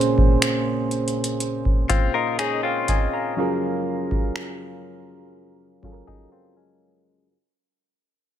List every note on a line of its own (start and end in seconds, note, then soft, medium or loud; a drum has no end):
0.00 1.08 A#2 medium
0.00 1.09 A#3 medium
0.00 1.09 C#4 medium
0.00 1.09 G#4 medium
0.00 1.13 C5 medium
0.00 closed hi-hat soft
0.18 kick medium
0.42 finger snap loud
0.42 closed hi-hat medium
0.91 closed hi-hat soft
1.08 closed hi-hat soft
1.24 closed hi-hat medium
1.40 closed hi-hat medium
1.65 kick medium
1.89 2.13 C4 medium
1.89 2.13 F4 medium
1.89 kick medium
1.89 closed hi-hat medium
2.14 2.38 F4 medium
2.14 2.37 A#4 medium
2.14 2.38 A#4 soft
2.14 2.38 D#5 medium
2.39 2.62 D#4 medium
2.39 2.62 G#4 medium
2.39 2.63 G#4 medium
2.39 2.63 C#5 medium
2.39 finger snap loud
2.39 closed hi-hat medium
2.63 3.34 C4 medium
2.63 3.33 F4 medium
2.63 2.88 C5 medium
2.63 2.87 F5 medium
2.88 3.12 D#5 medium
2.88 3.12 G#5 medium
2.88 kick medium
2.88 closed hi-hat medium
3.13 3.60 F5 soft
3.13 3.60 A#5 medium
3.37 5.02 F#3 medium
3.37 5.02 C#4 medium
3.37 5.03 F4 medium
3.37 5.03 G#4 medium
3.37 5.04 A#4 medium
4.11 kick medium
4.36 finger snap loud
5.82 7.07 F#3 medium
5.82 7.07 C#4 medium
5.82 7.07 F4 medium
5.82 7.08 G#4 medium
5.82 5.91 A4 medium
5.82 kick medium
5.92 7.12 A#4 medium
6.07 6.31 D#4 medium
6.07 6.31 G#4 medium
6.07 kick medium
6.32 6.56 C4 medium
6.32 6.55 F4 medium
6.57 7.27 G#3 medium
6.57 7.27 C#4 medium